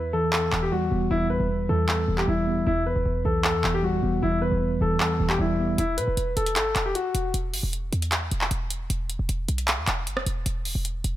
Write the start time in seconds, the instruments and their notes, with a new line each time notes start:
Already playing: tine electric piano E2, grand piano B4
0.13 tine electric piano E3, grand piano A4
0.33 grand piano A4, clap
0.52 808-style bass E1, tine electric piano E2, clap
0.63 grand piano G4
0.72 tine electric piano G3, grand piano F#4
0.91 808-style bass E1, tine electric piano B3
1.11 808-style bass E1, tine electric piano E2, grand piano E4
1.30 808-style bass G1, tine electric piano E2, grand piano B4
1.40 808-style bass E1
1.50 tine electric piano E2
1.69 808-style bass E2, tine electric piano E3, grand piano A4
1.89 tine electric piano E2, grand piano A4, clap
2.08 808-style bass E1, tine electric piano E2
2.18 grand piano G4, clap
2.28 808-style bass E1, tine electric piano G3, grand piano E4
2.47 tine electric piano B3
2.67 808-style bass E1, tine electric piano E2, grand piano E4
2.86 tine electric piano E2, grand piano B4
2.96 808-style bass E1
3.06 808-style bass E1, tine electric piano E2
3.25 808-style bass B1, tine electric piano E3, grand piano A4
3.44 tine electric piano E2, grand piano A4, clap
3.54 808-style bass E2
3.64 808-style bass E1, tine electric piano E2, clap
3.74 grand piano G4
3.83 808-style bass G1, tine electric piano G3, grand piano F#4
3.93 808-style bass E1
4.03 808-style bass E1, tine electric piano B3
4.22 808-style bass E1, tine electric piano E2, grand piano E4
4.42 tine electric piano E2, grand piano B4
4.52 808-style bass E1
4.61 tine electric piano E2
4.81 808-style bass E1, tine electric piano E3, grand piano A4
5.00 tine electric piano E2, grand piano A4, clap
5.20 808-style bass E1, tine electric piano E2
5.29 grand piano G4, clap
5.39 808-style bass E1, tine electric piano G3, grand piano E4
5.59 tine electric piano B3
5.78 808-style bass E1, grand piano E4, closed hi-hat
5.98 808-style bass B2, grand piano B4, closed hi-hat
6.08 808-style bass E1
6.17 808-style bass E1, closed hi-hat
6.37 808-style bass E1, grand piano A4, closed hi-hat
6.46 closed hi-hat
6.56 808-style bass G1, grand piano A4, clap, closed hi-hat
6.76 808-style bass E1, clap, closed hi-hat
6.86 grand piano G4
6.95 grand piano F#4, closed hi-hat
7.15 808-style bass E1, closed hi-hat
7.34 808-style bass E1, closed hi-hat
7.54 808-style bass G1, open hi-hat
7.63 808-style bass E1
7.73 closed hi-hat
7.92 808-style bass E2, closed hi-hat
8.02 closed hi-hat
8.12 clap, closed hi-hat
8.31 808-style bass E1, closed hi-hat
8.41 clap
8.51 808-style bass E1, closed hi-hat
8.70 closed hi-hat
8.90 808-style bass E1, closed hi-hat
9.10 closed hi-hat
9.19 808-style bass E1
9.29 808-style bass E1, closed hi-hat
9.48 808-style bass B1, closed hi-hat
9.58 closed hi-hat
9.68 clap, closed hi-hat
9.78 808-style bass E2
9.87 808-style bass E1, clap, closed hi-hat
10.07 808-style bass G1, closed hi-hat
10.17 808-style bass E1, cross-stick
10.26 808-style bass E1, closed hi-hat
10.46 808-style bass E1, closed hi-hat
10.65 open hi-hat
10.75 808-style bass E1
10.85 closed hi-hat
11.04 808-style bass E1, closed hi-hat